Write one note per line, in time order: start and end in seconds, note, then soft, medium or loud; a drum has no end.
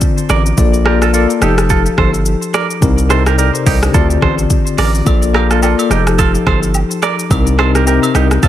0.00 0.36 D3 medium
0.00 0.36 C4 medium
0.00 0.37 F4 medium
0.00 0.37 D5 loud
0.00 kick loud
0.00 shaker medium
0.18 shaker medium
0.29 0.53 A1 medium
0.29 0.43 A#4 medium
0.29 0.42 D5 medium
0.29 cross-stick loud
0.29 shaker medium
0.46 shaker medium
0.57 1.27 A#1 loud
0.57 0.80 A#3 medium
0.57 0.81 F4 medium
0.57 0.81 A4 medium
0.57 0.82 D5 loud
0.57 kick loud
0.57 shaker loud
0.74 shaker medium
0.85 1.08 A#3 medium
0.85 1.09 F4 medium
0.85 0.99 G4 medium
0.85 1.09 A4 medium
0.85 0.98 A#4 medium
0.85 1.10 D5 medium
0.85 cross-stick loud
1.02 1.11 F4 medium
1.02 1.11 A4 medium
1.02 cross-stick medium
1.02 shaker medium
1.13 1.41 A#3 medium
1.13 1.42 F4 medium
1.13 1.26 F4 medium
1.13 1.26 A4 medium
1.13 1.42 A4 medium
1.13 1.43 D5 loud
1.13 shaker medium
1.30 shaker medium
1.41 1.89 F1 loud
1.41 2.32 F3 medium
1.41 2.32 D#4 medium
1.41 1.55 D#4 medium
1.41 2.33 G4 medium
1.41 1.54 G4 medium
1.41 2.33 A4 loud
1.41 cross-stick medium
1.41 shaker medium
1.58 cross-stick loud
1.58 shaker medium
1.70 1.83 F4 medium
1.70 1.82 A4 loud
1.70 kick medium
1.70 shaker medium
1.86 shaker soft
1.98 2.35 G1 loud
1.98 2.11 A4 medium
1.98 2.10 C5 medium
1.98 kick loud
1.98 cross-stick loud
2.14 shaker medium
2.26 shaker medium
2.42 shaker medium
2.54 2.67 A#4 medium
2.54 2.66 D5 medium
2.54 cross-stick loud
2.54 shaker medium
2.71 shaker medium
2.81 3.51 C2 loud
2.81 3.04 C3 medium
2.81 3.05 C4 medium
2.81 3.05 D#4 medium
2.81 3.06 A#4 medium
2.81 kick loud
2.81 shaker medium
2.98 shaker medium
3.09 3.33 C3 medium
3.09 3.33 C4 medium
3.09 3.33 D#4 medium
3.09 3.23 A4 medium
3.09 3.34 A#4 medium
3.09 3.22 C5 medium
3.09 cross-stick loud
3.09 shaker medium
3.26 3.36 G4 medium
3.26 3.35 A#4 medium
3.26 cross-stick medium
3.26 shaker medium
3.38 3.51 G4 medium
3.38 3.54 A4 medium
3.38 3.50 A#4 medium
3.38 3.54 D5 medium
3.38 shaker medium
3.54 3.81 G4 medium
3.54 3.81 C5 medium
3.54 shaker medium
3.66 3.90 C2 medium
3.66 3.79 D#4 medium
3.66 3.78 G4 medium
3.66 kick loud
3.66 open hi-hat medium
3.66 shaker medium
3.82 4.09 D4 medium
3.82 4.09 G4 medium
3.82 cross-stick loud
3.82 shaker soft
3.93 4.18 D2 loud
3.93 4.84 D3 medium
3.93 4.85 C4 medium
3.93 4.85 F4 medium
3.93 4.07 F4 medium
3.93 4.06 A4 medium
3.93 4.85 D5 loud
3.93 kick loud
3.93 shaker medium
4.10 shaker soft
4.22 4.46 A1 loud
4.22 4.35 A4 medium
4.22 4.34 C5 medium
4.22 kick loud
4.22 cross-stick loud
4.39 shaker medium
4.50 kick loud
4.50 shaker medium
4.67 shaker medium
4.78 5.02 A1 medium
4.78 4.91 A#4 medium
4.78 4.90 D5 medium
4.78 cross-stick loud
4.78 open hi-hat medium
4.78 shaker medium
4.95 shaker medium
5.05 5.75 A#1 loud
5.05 5.29 A#3 medium
5.05 5.29 F4 medium
5.05 5.30 A4 medium
5.05 5.30 D5 medium
5.05 kick loud
5.05 high agogo medium
5.05 shaker medium
5.23 shaker medium
5.33 5.57 A#3 medium
5.33 5.57 F4 medium
5.33 5.47 G4 medium
5.33 5.58 A4 medium
5.33 5.47 A#4 medium
5.33 5.58 F5 medium
5.33 cross-stick loud
5.33 high agogo medium
5.51 5.60 F4 medium
5.51 5.59 A4 medium
5.51 cross-stick medium
5.51 shaker medium
5.61 5.90 A#3 medium
5.61 5.90 F4 medium
5.61 5.75 F4 medium
5.61 5.75 A4 medium
5.61 5.91 A4 medium
5.61 5.91 D5 loud
5.61 low woodblock medium
5.61 shaker medium
5.79 high agogo medium
5.79 shaker medium
5.90 6.38 F1 loud
5.90 6.81 F3 medium
5.90 6.81 D#4 medium
5.90 6.03 D#4 medium
5.90 6.03 G4 medium
5.90 6.82 G4 medium
5.90 5.99 G#4 medium
5.90 cross-stick medium
5.90 shaker medium
5.99 6.85 A4 loud
6.07 cross-stick loud
6.07 shaker medium
6.18 6.31 F4 medium
6.18 6.31 A4 loud
6.18 kick medium
6.18 high agogo medium
6.18 shaker medium
6.35 shaker medium
6.47 6.84 G1 loud
6.47 6.59 A4 medium
6.47 6.59 C5 medium
6.47 kick loud
6.47 cross-stick loud
6.47 high agogo medium
6.63 shaker medium
6.74 low woodblock medium
6.74 shaker medium
6.91 shaker medium
7.02 7.15 A#4 medium
7.02 7.15 D5 medium
7.02 cross-stick loud
7.02 high agogo medium
7.02 shaker medium
7.19 shaker medium
7.30 7.99 C2 loud
7.30 7.53 C3 medium
7.30 7.54 C4 medium
7.30 7.54 D#4 medium
7.30 7.55 A#4 medium
7.30 kick loud
7.30 high agogo medium
7.30 shaker medium
7.47 shaker medium
7.58 7.81 C3 medium
7.58 7.82 C4 medium
7.58 7.82 D#4 medium
7.58 7.71 A4 medium
7.58 7.83 A#4 medium
7.58 7.71 C5 medium
7.58 cross-stick loud
7.58 high agogo medium
7.75 7.84 G4 medium
7.75 7.84 A#4 medium
7.75 cross-stick medium
7.75 shaker medium
7.85 8.42 C3 medium
7.85 8.41 C4 medium
7.85 8.43 D#4 medium
7.85 8.00 G4 medium
7.85 7.99 A#4 medium
7.85 8.43 A#4 loud
7.85 low woodblock medium
7.85 shaker medium
8.03 high agogo loud
8.03 shaker medium
8.15 8.38 C2 loud
8.15 8.28 D#4 medium
8.15 8.27 G4 medium
8.15 cross-stick loud
8.15 shaker medium
8.31 cross-stick loud
8.31 shaker soft
8.42 8.48 D2 loud
8.42 8.48 D3 medium
8.42 8.48 C4 medium
8.42 8.48 E4 medium
8.42 8.48 F4 medium
8.42 8.48 A4 loud
8.42 8.48 D5 loud
8.42 kick medium
8.42 high agogo medium
8.42 shaker medium